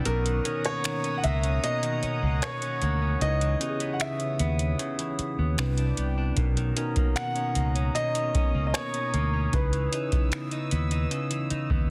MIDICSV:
0, 0, Header, 1, 8, 480
1, 0, Start_track
1, 0, Key_signature, 5, "major"
1, 0, Tempo, 789474
1, 35, Time_signature, 4, 2, 24, 8
1, 7236, End_track
2, 0, Start_track
2, 0, Title_t, "Analog synth pad"
2, 0, Program_c, 0, 89
2, 36, Note_on_c, 0, 78, 75
2, 36, Note_on_c, 0, 87, 88
2, 37, Note_on_c, 0, 82, 73
2, 38, Note_on_c, 0, 73, 84
2, 1936, Note_off_c, 0, 87, 0
2, 1937, Note_off_c, 0, 82, 0
2, 1959, Note_on_c, 0, 87, 74
2, 3371, Note_off_c, 0, 78, 0
2, 3372, Note_off_c, 0, 73, 0
2, 3382, Note_off_c, 0, 87, 0
2, 3391, Note_on_c, 0, 74, 73
2, 3392, Note_on_c, 0, 79, 68
2, 3868, Note_off_c, 0, 74, 0
2, 3869, Note_off_c, 0, 79, 0
2, 3873, Note_on_c, 0, 73, 85
2, 3874, Note_on_c, 0, 82, 78
2, 3874, Note_on_c, 0, 87, 94
2, 5775, Note_off_c, 0, 82, 0
2, 5796, Note_on_c, 0, 88, 91
2, 7210, Note_off_c, 0, 73, 0
2, 7210, Note_off_c, 0, 87, 0
2, 7236, Note_off_c, 0, 88, 0
2, 7236, End_track
3, 0, Start_track
3, 0, Title_t, "Grand piano"
3, 0, Program_c, 1, 0
3, 34, Note_on_c, 1, 70, 90
3, 370, Note_off_c, 1, 70, 0
3, 398, Note_on_c, 1, 73, 101
3, 692, Note_off_c, 1, 73, 0
3, 715, Note_on_c, 1, 78, 75
3, 752, Note_on_c, 1, 76, 95
3, 756, Note_off_c, 1, 78, 0
3, 995, Note_on_c, 1, 75, 99
3, 1001, Note_off_c, 1, 76, 0
3, 1475, Note_on_c, 1, 73, 92
3, 1489, Note_off_c, 1, 75, 0
3, 1956, Note_on_c, 1, 75, 95
3, 1969, Note_off_c, 1, 73, 0
3, 2392, Note_on_c, 1, 78, 65
3, 2406, Note_off_c, 1, 75, 0
3, 2435, Note_off_c, 1, 78, 0
3, 2439, Note_on_c, 1, 76, 84
3, 3613, Note_off_c, 1, 76, 0
3, 4352, Note_on_c, 1, 78, 94
3, 4809, Note_off_c, 1, 78, 0
3, 4833, Note_on_c, 1, 75, 100
3, 5261, Note_off_c, 1, 75, 0
3, 5270, Note_on_c, 1, 75, 63
3, 5313, Note_on_c, 1, 73, 88
3, 5314, Note_off_c, 1, 75, 0
3, 5798, Note_on_c, 1, 71, 81
3, 5808, Note_off_c, 1, 73, 0
3, 7236, Note_off_c, 1, 71, 0
3, 7236, End_track
4, 0, Start_track
4, 0, Title_t, "Tine electric piano"
4, 0, Program_c, 2, 4
4, 0, Control_c, 2, 64, 127
4, 26, Note_on_c, 2, 47, 67
4, 31, Note_on_c, 2, 59, 64
4, 37, Note_on_c, 2, 61, 63
4, 41, Note_on_c, 2, 63, 60
4, 42, Control_c, 2, 64, 0
4, 46, Note_on_c, 2, 70, 74
4, 134, Control_c, 2, 64, 127
4, 225, Note_off_c, 2, 47, 0
4, 228, Note_off_c, 2, 59, 0
4, 230, Note_off_c, 2, 61, 0
4, 233, Note_off_c, 2, 63, 0
4, 235, Note_off_c, 2, 70, 0
4, 267, Note_on_c, 2, 47, 76
4, 271, Note_on_c, 2, 59, 70
4, 277, Note_on_c, 2, 61, 73
4, 282, Note_on_c, 2, 51, 66
4, 286, Note_on_c, 2, 70, 82
4, 1050, Note_off_c, 2, 47, 0
4, 1052, Note_off_c, 2, 59, 0
4, 1055, Note_off_c, 2, 61, 0
4, 1057, Note_off_c, 2, 51, 0
4, 1060, Note_off_c, 2, 70, 0
4, 1943, Note_on_c, 2, 49, 69
4, 1948, Note_on_c, 2, 61, 61
4, 1953, Note_on_c, 2, 63, 60
4, 1957, Note_on_c, 2, 64, 63
4, 1962, Control_c, 2, 64, 0
4, 1963, Note_on_c, 2, 71, 73
4, 2080, Control_c, 2, 64, 127
4, 2144, Note_off_c, 2, 49, 0
4, 2146, Note_off_c, 2, 61, 0
4, 2149, Note_off_c, 2, 63, 0
4, 2151, Note_off_c, 2, 64, 0
4, 2153, Note_off_c, 2, 71, 0
4, 2184, Note_on_c, 2, 49, 75
4, 2189, Note_on_c, 2, 61, 69
4, 2194, Note_on_c, 2, 59, 68
4, 2199, Note_on_c, 2, 64, 68
4, 2204, Note_on_c, 2, 67, 66
4, 2239, Note_off_c, 2, 67, 0
4, 2244, Note_on_c, 2, 68, 85
4, 2969, Note_off_c, 2, 49, 0
4, 2971, Note_off_c, 2, 61, 0
4, 2974, Note_off_c, 2, 59, 0
4, 2976, Note_off_c, 2, 64, 0
4, 2999, Note_off_c, 2, 68, 0
4, 3384, Note_on_c, 2, 48, 89
4, 3389, Note_on_c, 2, 60, 81
4, 3395, Note_on_c, 2, 62, 81
4, 3399, Note_on_c, 2, 64, 83
4, 3402, Control_c, 2, 64, 0
4, 3404, Note_on_c, 2, 71, 103
4, 3504, Control_c, 2, 64, 127
4, 3779, Note_off_c, 2, 48, 0
4, 3781, Note_off_c, 2, 60, 0
4, 3784, Note_off_c, 2, 62, 0
4, 3787, Note_off_c, 2, 64, 0
4, 3789, Note_off_c, 2, 71, 0
4, 3865, Note_on_c, 2, 47, 80
4, 3869, Note_on_c, 2, 59, 70
4, 3873, Note_on_c, 2, 61, 70
4, 3879, Note_on_c, 2, 63, 76
4, 3883, Control_c, 2, 64, 0
4, 3884, Note_on_c, 2, 70, 88
4, 3984, Control_c, 2, 64, 127
4, 4064, Note_off_c, 2, 47, 0
4, 4067, Note_off_c, 2, 59, 0
4, 4069, Note_off_c, 2, 61, 0
4, 4072, Note_off_c, 2, 63, 0
4, 4074, Note_off_c, 2, 70, 0
4, 4104, Note_on_c, 2, 47, 88
4, 4108, Note_on_c, 2, 59, 84
4, 4114, Note_on_c, 2, 61, 81
4, 4118, Note_on_c, 2, 63, 78
4, 4123, Note_on_c, 2, 70, 96
4, 4889, Note_off_c, 2, 47, 0
4, 4891, Note_off_c, 2, 59, 0
4, 4893, Note_off_c, 2, 61, 0
4, 4896, Note_off_c, 2, 63, 0
4, 4898, Note_off_c, 2, 70, 0
4, 5787, Note_on_c, 2, 49, 66
4, 5793, Note_on_c, 2, 61, 64
4, 5798, Note_on_c, 2, 63, 64
4, 5802, Control_c, 2, 64, 0
4, 5803, Note_on_c, 2, 64, 65
4, 5807, Note_on_c, 2, 71, 75
4, 5909, Control_c, 2, 64, 127
4, 5986, Note_off_c, 2, 49, 0
4, 5989, Note_off_c, 2, 61, 0
4, 5991, Note_off_c, 2, 63, 0
4, 5994, Note_off_c, 2, 64, 0
4, 5996, Note_off_c, 2, 71, 0
4, 6026, Note_on_c, 2, 49, 76
4, 6031, Note_on_c, 2, 61, 70
4, 6037, Note_on_c, 2, 63, 67
4, 6041, Note_on_c, 2, 64, 74
4, 6046, Note_on_c, 2, 71, 84
4, 6810, Note_off_c, 2, 49, 0
4, 6812, Note_off_c, 2, 61, 0
4, 6815, Note_off_c, 2, 63, 0
4, 6817, Note_off_c, 2, 64, 0
4, 6820, Note_off_c, 2, 71, 0
4, 7236, End_track
5, 0, Start_track
5, 0, Title_t, "Clean electric guitar"
5, 0, Program_c, 3, 27
5, 0, Note_on_c, 3, 59, 62
5, 0, Note_on_c, 3, 62, 60
5, 34, Note_on_c, 3, 47, 84
5, 83, Note_off_c, 3, 62, 0
5, 155, Note_on_c, 3, 51, 62
5, 274, Note_on_c, 3, 61, 66
5, 292, Note_off_c, 3, 59, 0
5, 394, Note_on_c, 3, 58, 57
5, 512, Note_off_c, 3, 51, 0
5, 514, Note_on_c, 3, 51, 68
5, 632, Note_off_c, 3, 61, 0
5, 634, Note_on_c, 3, 61, 60
5, 747, Note_off_c, 3, 58, 0
5, 754, Note_on_c, 3, 58, 58
5, 871, Note_off_c, 3, 61, 0
5, 874, Note_on_c, 3, 61, 64
5, 988, Note_off_c, 3, 47, 0
5, 995, Note_on_c, 3, 47, 73
5, 1112, Note_off_c, 3, 51, 0
5, 1114, Note_on_c, 3, 51, 58
5, 1232, Note_off_c, 3, 61, 0
5, 1234, Note_on_c, 3, 61, 61
5, 1348, Note_off_c, 3, 58, 0
5, 1355, Note_on_c, 3, 58, 54
5, 1591, Note_off_c, 3, 61, 0
5, 1593, Note_on_c, 3, 61, 65
5, 1612, Note_off_c, 3, 51, 0
5, 1708, Note_off_c, 3, 58, 0
5, 1715, Note_on_c, 3, 58, 59
5, 1833, Note_off_c, 3, 61, 0
5, 1835, Note_on_c, 3, 61, 64
5, 1951, Note_off_c, 3, 47, 0
5, 1954, Note_on_c, 3, 49, 84
5, 2003, Note_off_c, 3, 58, 0
5, 2075, Note_on_c, 3, 52, 60
5, 2191, Note_off_c, 3, 61, 0
5, 2194, Note_on_c, 3, 63, 66
5, 2315, Note_on_c, 3, 59, 59
5, 2554, Note_off_c, 3, 63, 0
5, 2673, Note_off_c, 3, 59, 0
5, 2675, Note_on_c, 3, 59, 61
5, 2907, Note_off_c, 3, 49, 0
5, 2915, Note_on_c, 3, 49, 77
5, 3034, Note_off_c, 3, 52, 0
5, 3037, Note_on_c, 3, 52, 58
5, 3274, Note_off_c, 3, 59, 0
5, 3276, Note_on_c, 3, 59, 54
5, 3392, Note_off_c, 3, 49, 0
5, 3394, Note_on_c, 3, 48, 74
5, 3444, Note_off_c, 3, 52, 0
5, 3516, Note_on_c, 3, 62, 66
5, 3633, Note_off_c, 3, 59, 0
5, 3635, Note_on_c, 3, 59, 59
5, 3749, Note_off_c, 3, 62, 0
5, 3756, Note_on_c, 3, 62, 62
5, 3873, Note_off_c, 3, 48, 0
5, 3875, Note_on_c, 3, 47, 83
5, 3923, Note_off_c, 3, 62, 0
5, 3997, Note_on_c, 3, 51, 60
5, 4115, Note_on_c, 3, 61, 68
5, 4133, Note_off_c, 3, 59, 0
5, 4237, Note_on_c, 3, 58, 58
5, 4352, Note_off_c, 3, 51, 0
5, 4355, Note_on_c, 3, 51, 68
5, 4473, Note_off_c, 3, 61, 0
5, 4475, Note_on_c, 3, 61, 62
5, 4588, Note_off_c, 3, 58, 0
5, 4595, Note_on_c, 3, 58, 58
5, 4714, Note_off_c, 3, 61, 0
5, 4716, Note_on_c, 3, 61, 66
5, 4828, Note_off_c, 3, 47, 0
5, 4835, Note_on_c, 3, 47, 77
5, 4955, Note_off_c, 3, 51, 0
5, 4958, Note_on_c, 3, 51, 54
5, 5074, Note_off_c, 3, 61, 0
5, 5076, Note_on_c, 3, 61, 65
5, 5191, Note_off_c, 3, 58, 0
5, 5198, Note_on_c, 3, 58, 52
5, 5436, Note_off_c, 3, 61, 0
5, 5438, Note_on_c, 3, 61, 65
5, 5456, Note_off_c, 3, 51, 0
5, 5547, Note_off_c, 3, 58, 0
5, 5555, Note_on_c, 3, 58, 62
5, 5674, Note_off_c, 3, 61, 0
5, 5676, Note_on_c, 3, 61, 62
5, 5795, Note_off_c, 3, 47, 0
5, 5797, Note_on_c, 3, 49, 82
5, 5843, Note_off_c, 3, 58, 0
5, 5917, Note_on_c, 3, 52, 61
5, 6034, Note_off_c, 3, 61, 0
5, 6037, Note_on_c, 3, 63, 68
5, 6157, Note_on_c, 3, 59, 56
5, 6391, Note_off_c, 3, 63, 0
5, 6398, Note_on_c, 3, 63, 64
5, 6417, Note_off_c, 3, 52, 0
5, 6515, Note_off_c, 3, 59, 0
5, 6518, Note_on_c, 3, 59, 58
5, 6631, Note_off_c, 3, 63, 0
5, 6638, Note_on_c, 3, 63, 65
5, 6749, Note_off_c, 3, 49, 0
5, 6756, Note_on_c, 3, 49, 76
5, 6876, Note_on_c, 3, 52, 61
5, 6989, Note_off_c, 3, 63, 0
5, 6996, Note_on_c, 3, 63, 67
5, 7115, Note_off_c, 3, 59, 0
5, 7117, Note_on_c, 3, 59, 59
5, 7235, Note_off_c, 3, 49, 0
5, 7236, Note_off_c, 3, 52, 0
5, 7236, Note_off_c, 3, 59, 0
5, 7236, Note_off_c, 3, 63, 0
5, 7236, End_track
6, 0, Start_track
6, 0, Title_t, "Fingered electric bass"
6, 0, Program_c, 4, 33
6, 38, Note_on_c, 4, 35, 105
6, 237, Note_off_c, 4, 35, 0
6, 757, Note_on_c, 4, 37, 94
6, 956, Note_off_c, 4, 37, 0
6, 1354, Note_on_c, 4, 37, 93
6, 1454, Note_off_c, 4, 37, 0
6, 1715, Note_on_c, 4, 38, 81
6, 1915, Note_off_c, 4, 38, 0
6, 1953, Note_on_c, 4, 37, 111
6, 2154, Note_off_c, 4, 37, 0
6, 2674, Note_on_c, 4, 39, 94
6, 2875, Note_off_c, 4, 39, 0
6, 3275, Note_on_c, 4, 39, 86
6, 3375, Note_off_c, 4, 39, 0
6, 3393, Note_on_c, 4, 36, 90
6, 3594, Note_off_c, 4, 36, 0
6, 3634, Note_on_c, 4, 36, 83
6, 3835, Note_off_c, 4, 36, 0
6, 3874, Note_on_c, 4, 35, 106
6, 4075, Note_off_c, 4, 35, 0
6, 4595, Note_on_c, 4, 37, 92
6, 4795, Note_off_c, 4, 37, 0
6, 5196, Note_on_c, 4, 37, 89
6, 5296, Note_off_c, 4, 37, 0
6, 5556, Note_on_c, 4, 38, 78
6, 5756, Note_off_c, 4, 38, 0
6, 5796, Note_on_c, 4, 37, 99
6, 5996, Note_off_c, 4, 37, 0
6, 6519, Note_on_c, 4, 39, 87
6, 6717, Note_off_c, 4, 39, 0
6, 7116, Note_on_c, 4, 39, 86
6, 7216, Note_off_c, 4, 39, 0
6, 7236, End_track
7, 0, Start_track
7, 0, Title_t, "Muted fingered electric bass strokes"
7, 1235, Note_on_c, 9, 29, 45
7, 1296, Note_off_c, 9, 29, 0
7, 3155, Note_on_c, 9, 29, 47
7, 3216, Note_off_c, 9, 29, 0
7, 5077, Note_on_c, 9, 29, 48
7, 5137, Note_off_c, 9, 29, 0
7, 6998, Note_on_c, 9, 29, 49
7, 7059, Note_off_c, 9, 29, 0
7, 7236, End_track
8, 0, Start_track
8, 0, Title_t, "Drums"
8, 33, Note_on_c, 9, 42, 65
8, 94, Note_off_c, 9, 42, 0
8, 156, Note_on_c, 9, 42, 54
8, 217, Note_off_c, 9, 42, 0
8, 275, Note_on_c, 9, 42, 78
8, 335, Note_off_c, 9, 42, 0
8, 392, Note_on_c, 9, 42, 50
8, 453, Note_off_c, 9, 42, 0
8, 512, Note_on_c, 9, 42, 68
8, 518, Note_on_c, 9, 26, 112
8, 572, Note_off_c, 9, 42, 0
8, 579, Note_off_c, 9, 26, 0
8, 633, Note_on_c, 9, 42, 46
8, 693, Note_off_c, 9, 42, 0
8, 752, Note_on_c, 9, 42, 71
8, 812, Note_off_c, 9, 42, 0
8, 872, Note_on_c, 9, 42, 46
8, 933, Note_off_c, 9, 42, 0
8, 995, Note_on_c, 9, 42, 71
8, 1055, Note_off_c, 9, 42, 0
8, 1112, Note_on_c, 9, 42, 64
8, 1173, Note_off_c, 9, 42, 0
8, 1232, Note_on_c, 9, 42, 51
8, 1293, Note_off_c, 9, 42, 0
8, 1472, Note_on_c, 9, 42, 60
8, 1477, Note_on_c, 9, 26, 108
8, 1533, Note_off_c, 9, 42, 0
8, 1537, Note_off_c, 9, 26, 0
8, 1593, Note_on_c, 9, 42, 53
8, 1653, Note_off_c, 9, 42, 0
8, 1712, Note_on_c, 9, 42, 61
8, 1773, Note_off_c, 9, 42, 0
8, 1954, Note_on_c, 9, 42, 67
8, 2015, Note_off_c, 9, 42, 0
8, 2075, Note_on_c, 9, 42, 53
8, 2136, Note_off_c, 9, 42, 0
8, 2194, Note_on_c, 9, 42, 83
8, 2255, Note_off_c, 9, 42, 0
8, 2312, Note_on_c, 9, 42, 50
8, 2373, Note_off_c, 9, 42, 0
8, 2431, Note_on_c, 9, 42, 69
8, 2437, Note_on_c, 9, 26, 109
8, 2492, Note_off_c, 9, 42, 0
8, 2498, Note_off_c, 9, 26, 0
8, 2552, Note_on_c, 9, 42, 44
8, 2613, Note_off_c, 9, 42, 0
8, 2672, Note_on_c, 9, 42, 74
8, 2733, Note_off_c, 9, 42, 0
8, 2792, Note_on_c, 9, 42, 50
8, 2853, Note_off_c, 9, 42, 0
8, 2915, Note_on_c, 9, 42, 69
8, 2975, Note_off_c, 9, 42, 0
8, 3033, Note_on_c, 9, 42, 62
8, 3094, Note_off_c, 9, 42, 0
8, 3154, Note_on_c, 9, 42, 51
8, 3215, Note_off_c, 9, 42, 0
8, 3393, Note_on_c, 9, 42, 58
8, 3397, Note_on_c, 9, 26, 114
8, 3454, Note_off_c, 9, 42, 0
8, 3458, Note_off_c, 9, 26, 0
8, 3511, Note_on_c, 9, 42, 51
8, 3572, Note_off_c, 9, 42, 0
8, 3632, Note_on_c, 9, 42, 61
8, 3693, Note_off_c, 9, 42, 0
8, 3870, Note_on_c, 9, 42, 66
8, 3873, Note_on_c, 9, 36, 113
8, 3931, Note_off_c, 9, 42, 0
8, 3934, Note_off_c, 9, 36, 0
8, 3995, Note_on_c, 9, 42, 55
8, 4055, Note_off_c, 9, 42, 0
8, 4113, Note_on_c, 9, 42, 78
8, 4174, Note_off_c, 9, 42, 0
8, 4231, Note_on_c, 9, 42, 52
8, 4234, Note_on_c, 9, 36, 103
8, 4292, Note_off_c, 9, 42, 0
8, 4294, Note_off_c, 9, 36, 0
8, 4352, Note_on_c, 9, 42, 66
8, 4359, Note_on_c, 9, 26, 117
8, 4413, Note_off_c, 9, 42, 0
8, 4420, Note_off_c, 9, 26, 0
8, 4472, Note_on_c, 9, 42, 46
8, 4533, Note_off_c, 9, 42, 0
8, 4593, Note_on_c, 9, 42, 74
8, 4653, Note_off_c, 9, 42, 0
8, 4715, Note_on_c, 9, 42, 49
8, 4776, Note_off_c, 9, 42, 0
8, 4837, Note_on_c, 9, 42, 65
8, 4898, Note_off_c, 9, 42, 0
8, 4956, Note_on_c, 9, 42, 66
8, 5016, Note_off_c, 9, 42, 0
8, 5075, Note_on_c, 9, 36, 97
8, 5075, Note_on_c, 9, 42, 49
8, 5136, Note_off_c, 9, 36, 0
8, 5136, Note_off_c, 9, 42, 0
8, 5315, Note_on_c, 9, 42, 64
8, 5319, Note_on_c, 9, 26, 109
8, 5376, Note_off_c, 9, 42, 0
8, 5380, Note_off_c, 9, 26, 0
8, 5435, Note_on_c, 9, 42, 52
8, 5495, Note_off_c, 9, 42, 0
8, 5555, Note_on_c, 9, 42, 57
8, 5616, Note_off_c, 9, 42, 0
8, 5794, Note_on_c, 9, 42, 60
8, 5795, Note_on_c, 9, 36, 115
8, 5855, Note_off_c, 9, 42, 0
8, 5856, Note_off_c, 9, 36, 0
8, 5915, Note_on_c, 9, 42, 53
8, 5976, Note_off_c, 9, 42, 0
8, 6035, Note_on_c, 9, 42, 78
8, 6096, Note_off_c, 9, 42, 0
8, 6153, Note_on_c, 9, 42, 49
8, 6155, Note_on_c, 9, 36, 103
8, 6214, Note_off_c, 9, 42, 0
8, 6216, Note_off_c, 9, 36, 0
8, 6273, Note_on_c, 9, 42, 67
8, 6280, Note_on_c, 9, 26, 115
8, 6334, Note_off_c, 9, 42, 0
8, 6340, Note_off_c, 9, 26, 0
8, 6393, Note_on_c, 9, 42, 46
8, 6453, Note_off_c, 9, 42, 0
8, 6514, Note_on_c, 9, 42, 68
8, 6575, Note_off_c, 9, 42, 0
8, 6633, Note_on_c, 9, 42, 47
8, 6694, Note_off_c, 9, 42, 0
8, 6756, Note_on_c, 9, 42, 69
8, 6817, Note_off_c, 9, 42, 0
8, 6874, Note_on_c, 9, 42, 61
8, 6935, Note_off_c, 9, 42, 0
8, 6995, Note_on_c, 9, 42, 49
8, 7055, Note_off_c, 9, 42, 0
8, 7114, Note_on_c, 9, 36, 93
8, 7175, Note_off_c, 9, 36, 0
8, 7236, End_track
0, 0, End_of_file